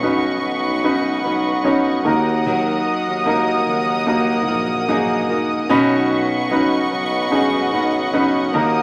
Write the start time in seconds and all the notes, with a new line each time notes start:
Already playing: B1 B2 C#4 D#4 F#4 B4 D#5 F#5 C#6
0.02 F#3 C#4 D#4 F#4 B4
0.43 B1
0.84 C#4 D#4 F#4 B4
1.24 B1 F#3 C#4 D#4 B4
1.64 F#3 C#4 D#4 F#4 B4 C#5
2.04 D#2 D#3 A#3 D#4 F#4 A#4 D#6
2.46 D#3 F#3 D#4 F#4 A#4
3.06 D#2
3.26 F#3 A#3 D#4 F#4 A#4
3.67 D#2
4.06 A#3 D#4 F#4 A#4
4.48 A#1 D#4 F#4 A#4
4.88 F#3 A#3 D#4 F#4 G#4 A#4
5.29 D#4 F#4 A#4
5.69 B1 B2 D#3 F#3 C#4 D#4 F#4 B4 D#5 F#5 C#6
6.50 F#3 C#4 D#4 F#4 B4
6.92 B1
7.31 C#4 D#4 F#4 G#4
7.72 B1 F#3 C#4 D#4 B4
8.13 F#3 C#4 D#4 F#4 B4
8.54 D#2 D#3 A#3 D#4 F#4 A#4 D#6